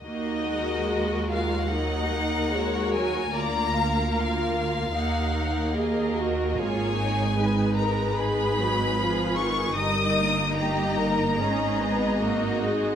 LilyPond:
<<
  \new Staff \with { instrumentName = "Violin section" } { \time 4/4 \key ees \minor \tempo 4 = 74 ees''4. f''8 ges''4. aes''8 | bes''4 f''2~ f''8 r8 | aes''4. bes''8 ces'''4. des'''8 | ees'''4 bes''2~ bes''8 r8 | }
  \new Staff \with { instrumentName = "Violin section" } { \time 4/4 \key ees \minor << { bes'2 ees''4 des''4 | d''8 f''4. ges''4 ees''4 | des''4 ces''2. | ees''4 ees''4 ees''2 | } \\ { ges'2 bes'2 | bes'2 bes'2 | aes'4 ces''8 bes'8 aes'4 aes'4 | bes'4 g'8 bes'8 aes'4 ges'4 | } >> }
  \new Staff \with { instrumentName = "Viola section" } { \time 4/4 \key ees \minor << { ees'4 ges'8 f'8 ees'4 ges'4 | f'4 f'4 ees'4 aes'8 ges'8 | f'8 ees'4. ees'4 f'4 | ees'2. ees'4 | } \\ { bes8 aes4. ges8 bes8 aes8 ges8 | bes2 bes2~ | bes4 aes4 aes8 ges8 f8 ees8 | g8 bes4. des'8 ces'8 bes8 aes8 | } >> }
  \new Staff \with { instrumentName = "Cello section" } { \clef bass \time 4/4 \key ees \minor ees,1 | d,2 ees,2 | aes,1 | g,2 aes,2 | }
  \new Staff \with { instrumentName = "Double bass section" } { \clef bass \time 4/4 \key ees \minor ees,1 | d,2 ees,2 | aes,,1 | g,,2 aes,,2 | }
>>